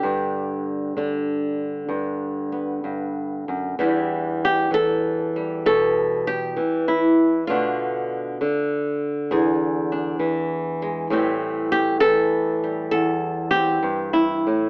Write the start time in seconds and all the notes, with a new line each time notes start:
Already playing: D3 G4
0.03 G2 D4
0.97 D3 D4
1.89 G2
2.52 B3
2.84 G2
3.48 F#2
3.79 E2 E3 G3 D4 G4
4.45 G4
4.71 E3 A4
5.36 G3
5.66 B2 A4
6.27 G4
6.56 E3
6.88 E4
7.47 B2 D3 A3 D4 F4
8.41 D3
9.31 E2 G#4
9.92 D4
10.19 E3
10.82 G#3
11.10 A2 E3 G3 C4 G4
11.72 G4
12.00 E3 A4
12.64 G3
12.91 E2 A4
13.51 G4
13.55 C4
13.83 G2
14.13 E4
14.47 A2